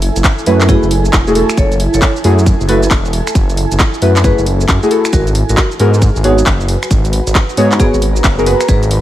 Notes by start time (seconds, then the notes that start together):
Already playing: E4 A4 G#5
0.02 open hi-hat
0.16 F#1, closed hi-hat, shaker
0.24 kick, clap, closed hi-hat, shaker
0.39 shaker
0.46 F#2 A3 E4 F#4 B4, open hi-hat
0.61 clap, shaker
0.69 A3 E4 F#4 G#4 B4, kick, closed hi-hat, shaker
0.83 F#1, shaker
0.91 open hi-hat
1.05 shaker
1.13 E1, kick, clap, closed hi-hat, shaker
1.27 A3 E4 F#4 G#4, shaker
1.35 A3 E4 F#4 A4, open hi-hat
1.50 finger snap, shaker
1.57 F#1 A4 C#5, kick, closed hi-hat, shaker
1.72 closed hi-hat, shaker
1.80 open hi-hat
1.94 F#1 A4 C#5, closed hi-hat, shaker
2.02 kick, clap, closed hi-hat, shaker
2.16 shaker
2.24 F#2 A3 E4 F#4 G#4, open hi-hat
2.39 shaker
2.46 kick, closed hi-hat, shaker
2.61 F#1, shaker
2.68 A3 E4 F#4 A4 B4, open hi-hat
2.83 shaker
2.91 E1, kick, clap, open hi-hat, shaker
3.05 shaker
3.13 open hi-hat
3.27 finger snap, shaker
3.35 F#1, kick, closed hi-hat, shaker
3.50 closed hi-hat, shaker
3.57 open hi-hat
3.72 F#1, closed hi-hat, shaker
3.80 kick, clap, closed hi-hat, shaker
3.94 shaker
4.02 F#2 A3 E4 F#4 B4, open hi-hat
4.16 clap, shaker
4.24 A3 E4 F#4 G#4 B4, kick, closed hi-hat, shaker
4.38 F#1, shaker
4.46 open hi-hat
4.61 shaker
4.68 F#2, kick, clap, closed hi-hat, shaker
4.83 A3 E4 F#4 G#4, shaker
4.91 A3 E4 F#4 A4, open hi-hat
5.05 finger snap, shaker
5.13 G#1 F#4 A#4, kick, closed hi-hat, shaker
5.27 closed hi-hat, shaker
5.35 open hi-hat
5.47 G#1 F#4 A#4 B4, closed hi-hat, shaker
5.57 kick, clap, closed hi-hat, shaker
5.72 shaker
5.80 G#2 B3 F#4 G#4 A#4, open hi-hat
5.94 shaker
6.02 kick, closed hi-hat, shaker
6.16 G#1, shaker
6.24 B3 D#4 F#4 G#4 C#5, open hi-hat
6.38 shaker
6.46 F#1, kick, clap, open hi-hat, shaker
6.59 A#5, shaker
6.68 open hi-hat
6.83 finger snap, shaker
6.91 G#1, kick, closed hi-hat, shaker
7.05 closed hi-hat, shaker
7.13 open hi-hat
7.27 G#1, closed hi-hat, shaker
7.35 kick, clap, closed hi-hat, shaker
7.49 shaker
7.57 G#2 B3 F#4 G#4 C#5, open hi-hat
7.72 clap, shaker
7.80 B3 F#4 G#4 C#5, kick, closed hi-hat, shaker
7.94 G#1, shaker
8.02 open hi-hat
8.16 shaker
8.24 F#1, kick, clap, closed hi-hat, shaker
8.38 B3 F#4 G#4 A#4, shaker
8.46 B3 F#4 G#4 B4, open hi-hat
8.61 finger snap, shaker
8.68 G#1 G#4 B4, kick, closed hi-hat, shaker
8.83 closed hi-hat, shaker
8.91 open hi-hat